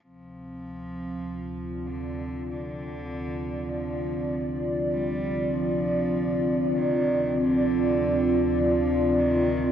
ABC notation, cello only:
X:1
M:4/4
L:1/16
Q:1/4=49
K:Dm
V:1 name="Cello" clef=bass
F,6 D,2 D,4 F,3 z | G,2 F,4 _E,2 D,4 F,2 E,2 |]